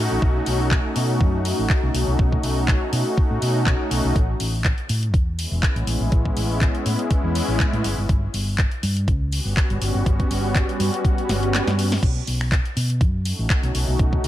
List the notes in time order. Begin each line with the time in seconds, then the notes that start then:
Already playing: A3 C#4 D#4 F#4
0.11 A1
0.22 B1, kick
0.46 B1, open hi-hat
0.71 kick, clap
0.96 B2, open hi-hat
1.21 F#2, kick
1.45 open hi-hat
1.59 A1
1.70 kick, clap
1.83 B1
1.94 B1 A3 C#4 D#4 F#4, open hi-hat
2.07 B1
2.19 B1, kick
2.32 kick
2.43 B1, open hi-hat
2.68 kick, clap
2.93 B2, open hi-hat
3.16 A3 C#4 D#4 F#4, kick
3.31 A2
3.42 B2, open hi-hat
3.67 kick, clap
3.91 B1, open hi-hat
4.04 B1
4.16 A1, kick, closed hi-hat
4.40 A1, open hi-hat
4.64 kick, clap, closed hi-hat
4.78 closed hi-hat
4.89 A2, open hi-hat
5.03 closed hi-hat
5.14 E2, kick, closed hi-hat
5.39 open hi-hat
5.51 E1
5.63 kick, clap, closed hi-hat
5.76 A1, closed hi-hat
5.86 A1 G#3 B3 C#4 E4, open hi-hat
6.00 A1
6.12 A1, kick, closed hi-hat
6.25 kick
6.36 A1, open hi-hat
6.61 kick, clap, closed hi-hat
6.75 closed hi-hat
6.86 A2, open hi-hat
6.99 closed hi-hat
7.11 kick, closed hi-hat
7.24 E2
7.35 open hi-hat
7.48 A1
7.60 kick, clap, closed hi-hat
7.73 A2, closed hi-hat
7.84 G1, open hi-hat
7.98 G1
8.09 G1, kick, closed hi-hat
8.34 G1, open hi-hat
8.58 kick, clap, closed hi-hat
8.71 closed hi-hat
8.83 G2, open hi-hat
8.97 closed hi-hat
9.08 C#2, kick, closed hi-hat
9.32 open hi-hat
9.45 G1
9.57 kick, clap, closed hi-hat
9.70 G1, closed hi-hat
9.80 G1 G3 B3 C#4 F#4, open hi-hat
9.95 G1
10.06 G1, kick, closed hi-hat
10.20 kick, closed hi-hat
10.30 G1, open hi-hat
10.55 kick, clap, closed hi-hat
10.69 closed hi-hat
10.80 G2, open hi-hat
10.94 closed hi-hat
11.05 kick, closed hi-hat
11.18 closed hi-hat
11.29 G1, snare, open hi-hat
11.43 closed hi-hat
11.55 snare, clap, closed hi-hat
11.67 G2, snare, closed hi-hat
11.79 open hi-hat
11.92 snare, open hi-hat
12.03 B1, kick, closed hi-hat, crash
12.27 B1, open hi-hat
12.41 finger snap
12.52 kick, clap, closed hi-hat
12.65 closed hi-hat
12.77 B2, open hi-hat
12.90 closed hi-hat
13.01 F#2, kick, closed hi-hat
13.25 open hi-hat
13.39 A1
13.50 finger snap, kick, clap, closed hi-hat
13.63 B1, closed hi-hat
13.73 B1 A3 C#4 D#4 F#4, open hi-hat
13.88 B1
13.99 B1, kick, closed hi-hat
14.13 kick
14.24 B1, open hi-hat